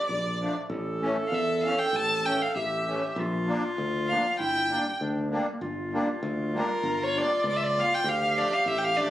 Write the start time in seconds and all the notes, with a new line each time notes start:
Already playing: G4
0.07 A#1 D5
0.40 F3 A3 D4
0.70 A1 A4
1.01 E3 A3 C#4
1.27 F5
1.32 E2 E5
1.63 E3 A3 C#4 F5
1.79 G5
1.93 A1 A5
2.25 E3 A3 C#4 G5
2.42 F5
2.55 A1 G4 E5
2.88 E3 A3 C#4
3.16 A#1 F4
3.47 F3 A#3 D4
3.78 D2
4.08 F3 A#3 D4 F5
4.39 G1 E4 G5
4.70 G3 A#3 D4
5.00 D2 D4
5.30 G3 A#3 D4
5.61 G1 F4
5.93 G3 A#3 D4
6.23 D2
6.54 G3 A#3 D4
6.58 A#4
6.83 G1
7.04 C#5
7.16 G3 A#3 D4 D5
7.44 C#2
7.49 D5
7.56 E5
7.63 D5
7.76 G3 A#3 F4 F5
7.94 G5
8.04 D2 G4
8.09 F5
8.36 F3 A3 D4 D5
8.53 F5
8.63 A1 F5
8.67 E5
8.78 G5
8.84 F5
8.97 F3 A3 D4 D5